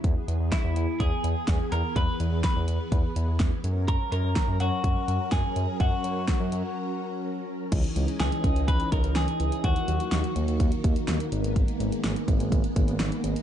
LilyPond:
<<
  \new Staff \with { instrumentName = "Clean electric guitar" } { \time 4/4 \key fis \mixolydian \tempo 4 = 125 r4 e'4 gis'4. ais'8 | b'4 b'2 r4 | ais'8 ais'4 fis'4. gis'4 | fis'2.~ fis'8 r8 |
r4 gis'4 b'8 ais'8 gis'4 | fis'4. r2 r8 | r1 | }
  \new Staff \with { instrumentName = "String machine" } { \time 4/4 \key fis \mixolydian << { <e gis'>1~ | <e gis'>2.~ <e gis'>8 <fis ais'>8~ | <fis ais'>1~ | <fis ais'>1 |
<e dis'>1 | <dis fis'>2.~ <dis fis'>8 <gis b>8~ | <gis b>1 | } \\ { b1~ | b2.~ b8 cis'8~ | cis'1~ | cis'1 |
cis'1 | ais1~ | ais1 | } >> }
  \new Staff \with { instrumentName = "Handpan" } { \clef bass \time 4/4 \key fis \mixolydian r1 | r1 | r1 | r1 |
e8 gis8 e8 cis'8 e8 dis'8 e8 e'8 | dis8 fis8 dis8 ais8 dis8 dis'8 dis8 dis'8 | dis8 gis8 dis8 ais8 dis8 b8 dis8 dis'8 | }
  \new Staff \with { instrumentName = "Analog synth bass" } { \clef bass \time 4/4 \key fis \mixolydian e,16 r16 e,16 e,16 r16 e,16 e,16 r16 e,16 r16 e,16 r16 e,16 r16 e,16 r16 | e,16 r16 e,16 e,16 r16 e,16 e,16 r16 e,16 r16 e,16 e,16 e,16 r16 fis,8~ | fis,16 r16 fis,16 fis,16 r16 fis,16 fis,16 r16 fis,16 r16 fis,16 r16 fis,16 r16 fis,16 r16 | fis,16 r16 fis,16 fis,16 r16 fis,16 fis,16 r2 r16 |
cis,16 r16 cis,16 r16 cis,16 r16 cis,16 cis,16 cis,16 r16 cis,16 cis,16 cis,16 r16 cis,16 r16 | dis,16 r16 dis,16 r16 dis,16 r16 dis,16 dis,16 dis,16 r16 dis,16 r16 dis,16 r16 gis,,8~ | gis,,16 r16 gis,,16 r16 gis,,16 r16 gis,,16 gis,,16 gis,,16 r16 gis,,16 gis,,16 gis,,16 r16 gis,,16 r16 | }
  \new DrumStaff \with { instrumentName = "Drums" } \drummode { \time 4/4 <hh bd>8 hh8 <hh bd sn>8 hh8 <hh bd>8 hh8 <hh bd sn>8 hh8 | <hh bd>8 hh8 <hh bd sn>8 hh8 <hh bd>8 hh8 <hh bd sn>8 hh8 | <hh bd>8 hh8 <hh bd sn>8 hh8 <hh bd>8 hh8 <hh bd sn>8 hh8 | <hh bd>8 hh8 <hh bd sn>8 hh8 r4 r4 |
<cymc hh bd>16 hh16 hh16 hh16 <hh sn>16 hh16 <hh bd>16 hh16 <hh bd>16 hh16 <hh bd>16 hh16 <hh sn>16 hh16 hh16 hh16 | <hh bd>16 hh16 hh16 hh16 <hh sn>16 hh16 hh16 hh16 <hh bd>16 hh16 <hh bd>16 hh16 <hh sn>16 hh16 hh16 hh16 | <hh bd>16 hh16 hh16 hh16 <hh sn>16 hh16 <hh bd>16 hh16 <hh bd>16 hh16 <hh bd>16 hh16 <hh sn>16 hh16 hh16 hh16 | }
>>